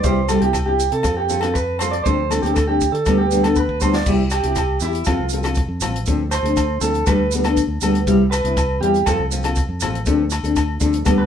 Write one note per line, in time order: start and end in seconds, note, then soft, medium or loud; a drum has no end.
0.03 0.38 C2 medium
0.03 0.19 G3 medium
0.03 0.19 C4 medium
0.03 0.19 E4 medium
0.03 0.19 G4 medium
0.03 0.28 C5 medium
0.03 kick medium
0.03 closed hi-hat soft
0.03 maracas medium
0.28 0.41 G3 medium
0.28 0.41 C4 medium
0.28 0.41 E4 medium
0.28 0.39 G4 medium
0.28 0.41 A4 medium
0.28 cross-stick medium
0.28 closed hi-hat medium
0.28 low agogo medium
0.28 maracas medium
0.40 0.88 C2 medium
0.40 0.57 C4 soft
0.40 0.57 E4 soft
0.40 0.56 G4 medium
0.40 0.53 G4 medium
0.40 closed hi-hat soft
0.53 kick medium
0.53 cross-stick medium
0.53 closed hi-hat soft
0.53 low agogo medium
0.53 maracas medium
0.66 0.82 C4 soft
0.66 0.82 E4 soft
0.66 0.90 G4 medium
0.66 0.81 G4 medium
0.79 closed hi-hat soft
0.79 maracas medium
0.92 1.03 C3 medium
0.92 1.16 A4 medium
0.92 closed hi-hat soft
1.03 2.01 F2 medium
1.03 1.19 C4 medium
1.03 1.19 F4 medium
1.03 1.19 A4 medium
1.03 muted nylon-string guitar stroke medium
1.03 kick medium
1.03 cross-stick medium
1.03 closed hi-hat soft
1.03 low agogo medium
1.03 maracas medium
1.17 1.41 G4 medium
1.28 1.42 F3 medium
1.28 1.42 C4 medium
1.28 1.41 F4 medium
1.28 1.41 A4 medium
1.28 closed hi-hat soft
1.28 maracas medium
1.41 1.58 C4 soft
1.41 1.57 F4 medium
1.41 1.57 A4 medium
1.41 1.54 A4 medium
1.41 cross-stick medium
1.41 closed hi-hat soft
1.41 low agogo medium
1.54 1.78 B4 medium
1.54 kick medium
1.54 closed hi-hat soft
1.54 maracas medium
1.79 1.95 F3 medium
1.79 1.96 C4 medium
1.79 1.96 F4 medium
1.79 1.96 A4 medium
1.79 1.91 C5 medium
1.79 cross-stick medium
1.79 closed hi-hat soft
1.79 low agogo medium
1.79 maracas medium
1.91 2.03 D5 medium
1.91 closed hi-hat soft
2.04 2.40 D2 medium
2.04 2.20 F3 medium
2.04 2.20 C4 medium
2.04 2.21 D4 medium
2.04 2.21 A4 medium
2.04 2.28 C5 medium
2.04 kick medium
2.04 closed hi-hat soft
2.04 maracas medium
2.29 2.42 F3 medium
2.29 2.43 C4 medium
2.29 2.43 D4 medium
2.29 2.42 A4 medium
2.29 cross-stick medium
2.29 closed hi-hat soft
2.29 low agogo medium
2.29 maracas medium
2.42 2.89 D2 medium
2.42 2.59 C4 soft
2.42 2.58 D4 soft
2.42 2.54 G4 medium
2.42 2.58 A4 medium
2.42 closed hi-hat soft
2.42 maracas soft
2.54 2.67 A4 medium
2.54 kick medium
2.54 cross-stick medium
2.54 closed hi-hat soft
2.54 low agogo medium
2.54 maracas medium
2.67 2.83 C4 soft
2.67 2.83 D4 medium
2.67 2.91 G4 medium
2.67 2.83 A4 medium
2.81 kick medium
2.81 closed hi-hat soft
2.81 maracas medium
2.92 3.04 D3 medium
2.92 3.16 A4 medium
2.92 closed hi-hat soft
3.06 4.02 D2 medium
3.06 3.21 G3 medium
3.06 3.21 B3 medium
3.06 3.21 D4 medium
3.06 3.22 A4 medium
3.06 kick medium
3.06 cross-stick medium
3.06 closed hi-hat soft
3.06 low agogo medium
3.06 maracas medium
3.18 3.42 G4 medium
3.31 3.43 G3 medium
3.31 3.43 B3 medium
3.31 3.43 D4 medium
3.31 3.41 A4 medium
3.31 closed hi-hat soft
3.31 maracas medium
3.43 3.59 B3 soft
3.43 3.59 D4 medium
3.43 3.58 A4 medium
3.43 3.55 A4 medium
3.43 cross-stick medium
3.43 closed hi-hat soft
3.43 low agogo medium
3.43 maracas soft
3.55 3.80 B4 medium
3.55 kick medium
3.55 maracas medium
3.69 kick soft
3.80 3.96 G3 medium
3.80 3.96 B3 medium
3.80 3.96 D4 medium
3.80 3.93 C5 medium
3.80 muted nylon-string guitar stroke medium
3.80 kick medium
3.80 low agogo medium
3.80 maracas medium
3.93 4.06 D5 medium
3.93 snare medium
3.93 maracas soft
4.06 4.41 C2 medium
4.06 4.21 G3 medium
4.06 4.22 C4 medium
4.06 4.22 E4 medium
4.06 4.22 G4 medium
4.06 kick medium
4.06 crash medium
4.06 maracas medium
4.30 4.78 G4 medium
4.30 cross-stick medium
4.30 closed hi-hat medium
4.30 low agogo medium
4.30 maracas medium
4.43 4.78 C2 medium
4.43 4.60 C4 soft
4.43 4.59 E4 soft
4.43 4.59 G4 medium
4.43 closed hi-hat medium
4.55 kick medium
4.55 cross-stick medium
4.55 closed hi-hat medium
4.55 low agogo medium
4.55 maracas medium
4.80 5.04 E2 loud
4.80 5.06 E4 medium
4.80 4.97 E4 medium
4.80 4.98 G4 medium
4.80 closed hi-hat medium
4.80 maracas medium
4.92 closed hi-hat medium
4.92 maracas soft
5.04 5.18 F2 loud
5.04 5.21 F3 medium
5.04 5.21 C4 medium
5.04 5.31 F4 medium
5.04 5.22 F4 medium
5.04 5.22 A4 medium
5.04 kick medium
5.04 cross-stick medium
5.04 closed hi-hat soft
5.04 low agogo medium
5.04 maracas medium
5.19 5.65 C2 medium
5.29 5.44 F3 medium
5.29 5.44 C4 medium
5.29 closed hi-hat soft
5.29 maracas medium
5.33 5.44 F4 medium
5.33 5.43 A4 medium
5.43 5.60 C4 soft
5.43 5.59 F4 medium
5.43 5.59 A4 medium
5.43 cross-stick medium
5.43 closed hi-hat medium
5.43 low agogo medium
5.43 maracas soft
5.55 kick medium
5.55 closed hi-hat medium
5.55 maracas medium
5.69 5.82 F2 medium
5.81 6.04 A1 medium
5.81 5.96 F3 medium
5.81 5.97 C4 medium
5.81 5.97 F4 medium
5.81 cross-stick medium
5.81 closed hi-hat medium
5.81 low agogo medium
5.81 maracas loud
5.96 closed hi-hat soft
6.06 6.42 D2 medium
6.06 6.21 F3 medium
6.06 6.22 C4 medium
6.06 6.22 D4 medium
6.06 6.22 A4 medium
6.06 kick medium
6.06 closed hi-hat soft
6.06 maracas medium
6.31 6.78 C5 loud
6.31 cross-stick medium
6.31 closed hi-hat soft
6.31 low agogo medium
6.31 maracas medium
6.43 6.78 D2 medium
6.43 6.60 C4 soft
6.43 6.60 D4 soft
6.43 6.59 A4 medium
6.43 closed hi-hat medium
6.56 kick medium
6.56 cross-stick medium
6.56 closed hi-hat soft
6.56 low agogo medium
6.56 maracas medium
6.81 7.04 D2 loud
6.81 6.96 F3 medium
6.81 6.96 C4 medium
6.81 6.97 D4 medium
6.81 7.06 A4 medium
6.81 6.97 A4 medium
6.81 closed hi-hat soft
6.81 maracas medium
6.94 closed hi-hat soft
6.94 maracas soft
7.06 7.18 D2 loud
7.06 7.21 G3 medium
7.06 7.22 D4 medium
7.06 7.22 A4 medium
7.06 7.31 B4 medium
7.06 muted nylon-string guitar stroke medium
7.06 kick medium
7.06 cross-stick medium
7.06 closed hi-hat soft
7.06 low agogo medium
7.06 maracas medium
7.19 7.65 D2 medium
7.31 7.45 G3 medium
7.31 7.45 B3 medium
7.31 7.46 D4 medium
7.31 7.44 A4 medium
7.31 closed hi-hat soft
7.31 maracas medium
7.43 7.60 B3 medium
7.43 7.60 D4 medium
7.43 7.59 A4 medium
7.43 cross-stick medium
7.43 closed hi-hat soft
7.43 low agogo medium
7.43 maracas soft
7.57 kick medium
7.57 closed hi-hat soft
7.57 maracas medium
7.67 7.80 D2 medium
7.81 8.05 D2 medium
7.81 7.96 G3 medium
7.81 7.97 B3 medium
7.81 7.97 D4 medium
7.81 7.97 A4 medium
7.81 closed hi-hat soft
7.81 low agogo medium
7.81 maracas medium
7.95 closed hi-hat medium
8.07 8.42 C2 medium
8.07 8.22 G3 medium
8.07 8.22 C4 medium
8.07 8.22 E4 medium
8.07 8.23 G4 medium
8.07 kick medium
8.07 closed hi-hat soft
8.07 maracas medium
8.31 8.78 B4 medium
8.31 cross-stick medium
8.31 closed hi-hat medium
8.31 low agogo medium
8.31 maracas medium
8.44 8.79 C2 medium
8.44 8.60 C4 soft
8.44 8.60 E4 soft
8.44 closed hi-hat medium
8.57 kick medium
8.57 cross-stick medium
8.57 closed hi-hat soft
8.57 low agogo medium
8.57 maracas medium
8.80 9.04 E2 loud
8.80 8.96 G3 medium
8.80 8.97 C4 medium
8.80 8.97 E4 medium
8.80 9.05 G4 medium
8.80 8.97 G4 medium
8.80 closed hi-hat soft
8.94 closed hi-hat soft
8.94 maracas soft
9.06 9.18 F2 medium
9.06 9.22 F3 medium
9.06 9.22 C4 medium
9.06 9.22 F4 medium
9.06 9.21 A4 medium
9.06 9.23 A4 medium
9.06 kick medium
9.06 cross-stick medium
9.06 closed hi-hat medium
9.06 low agogo medium
9.06 maracas medium
9.19 9.65 C2 medium
9.31 9.44 F3 medium
9.31 9.44 C4 medium
9.31 9.44 F4 medium
9.31 9.44 A4 medium
9.31 closed hi-hat medium
9.31 maracas medium
9.43 9.60 F4 medium
9.43 9.59 A4 medium
9.43 cross-stick medium
9.43 closed hi-hat medium
9.43 low agogo medium
9.43 maracas soft
9.47 9.60 C4 soft
9.55 kick medium
9.55 closed hi-hat soft
9.55 maracas medium
9.69 9.84 F2 medium
9.80 10.05 A1 medium
9.80 9.97 F3 medium
9.80 9.97 C4 medium
9.80 9.98 F4 medium
9.80 9.98 A4 medium
9.80 cross-stick medium
9.80 closed hi-hat medium
9.80 low agogo medium
9.80 maracas loud
9.95 closed hi-hat medium
10.06 10.42 D2 medium
10.06 10.21 F3 medium
10.06 10.22 C4 medium
10.06 10.22 D4 medium
10.06 10.22 A4 medium
10.06 kick medium
10.06 closed hi-hat medium
10.06 maracas medium
10.30 cross-stick medium
10.30 closed hi-hat soft
10.30 low agogo medium
10.30 maracas medium
10.43 10.78 D2 medium
10.43 10.60 C4 soft
10.43 10.59 D4 medium
10.43 10.59 A4 medium
10.43 closed hi-hat medium
10.43 maracas soft
10.56 kick medium
10.56 cross-stick medium
10.56 closed hi-hat soft
10.56 low agogo medium
10.56 maracas medium
10.80 11.04 D2 medium
10.80 10.96 F3 medium
10.80 10.96 C4 medium
10.80 10.96 D4 medium
10.80 10.96 A4 medium
10.80 kick medium
10.80 closed hi-hat soft
10.80 maracas medium
10.93 closed hi-hat soft
10.93 maracas soft
11.05 11.17 D2 loud
11.05 11.20 G3 medium
11.05 11.21 B3 medium
11.05 11.21 D4 medium
11.05 11.21 A4 medium
11.05 kick medium
11.05 cross-stick medium
11.05 closed hi-hat soft
11.05 low agogo medium
11.05 maracas medium
11.18 11.26 D2 medium
11.18 11.26 B4 medium